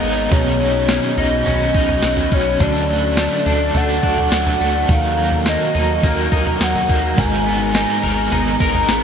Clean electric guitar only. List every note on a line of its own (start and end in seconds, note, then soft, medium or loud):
0.00 0.31 G#2 medium
0.00 0.89 B3 medium
0.00 0.92 D#4 medium
0.00 0.38 A#4 medium
0.31 2.60 B2 medium
0.60 2.03 F#3 medium
0.89 1.45 C#4 medium
1.18 1.74 D#4 medium
1.46 2.31 C#4 medium
1.75 2.66 D#4 medium
2.04 2.89 F#3 medium
2.32 2.66 C#4 medium
2.61 4.88 D3 medium
2.89 4.32 F#3 medium
3.18 3.73 A3 medium
3.46 4.02 D4 medium
3.74 4.59 A3 medium
4.04 4.95 D4 medium
4.32 5.17 F#3 medium
4.60 4.95 A3 medium
4.89 8.39 D#3 medium
5.17 6.60 F#3 medium
5.46 6.03 A#3 medium
5.75 6.32 D#4 medium
6.03 6.89 A#3 medium
6.32 7.74 D#4 medium
6.61 7.24 F#3 medium
6.90 7.46 A#3 medium
7.18 9.03 G#2 medium
7.46 8.89 B3 medium
7.75 8.31 D#4 medium
8.03 8.59 A#4 medium
8.32 9.03 D#4 medium
8.61 9.03 A#4 medium
8.89 9.03 B3 medium